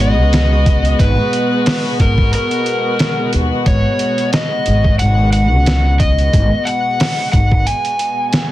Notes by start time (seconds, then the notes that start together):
Already playing: G#1 B2 G#3 B3 F#4
0.00 D#5, closed hi-hat
0.19 C#2
0.33 snare, closed hi-hat
0.66 kick, closed hi-hat
0.85 closed hi-hat
0.99 G#1 B4, kick, closed hi-hat
1.33 closed hi-hat
1.66 snare, open hi-hat
2.00 G#1 A#4, kick, closed hi-hat
2.18 kick
2.33 A#4, closed hi-hat
2.51 closed hi-hat
2.66 closed hi-hat
2.99 snare, closed hi-hat
3.33 D#2, closed hi-hat
3.66 G#1 C#5, kick, closed hi-hat
3.99 closed hi-hat
4.18 closed hi-hat
4.33 D#5, snare, closed hi-hat
4.66 G#1, closed hi-hat
4.84 kick
4.99 G#1 F#5, closed hi-hat
5.33 F#5, closed hi-hat
5.53 C#2
5.66 snare, closed hi-hat
6.00 D#5, kick, closed hi-hat
6.19 closed hi-hat
6.33 G#1, kick, closed hi-hat
6.65 F#5, closed hi-hat
7.00 snare, open hi-hat
7.32 G#1 F#5, kick, closed hi-hat
7.51 kick
7.66 G#5, closed hi-hat
7.85 closed hi-hat
7.99 closed hi-hat
8.33 snare, closed hi-hat